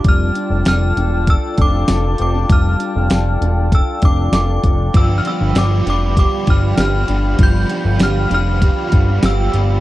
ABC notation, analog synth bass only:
X:1
M:4/4
L:1/16
Q:1/4=98
K:Flyd
V:1 name="Analog synth bass" clef=bass
F,,,2 z F,,, F,,,2 E,,,3 z F,,,2 F,,,2 F,,,2 | F,,,2 z F,,, F,,,2 E,,,3 z F,,,2 F,,,2 F,,,2 | G,,,2 z G,,, G,,,2 F,,,3 z G,,,2 G,,,2 G,,,2 | G,,,2 z G,,, G,,,2 F,,,3 z G,,,2 G,,,2 G,,,2 |]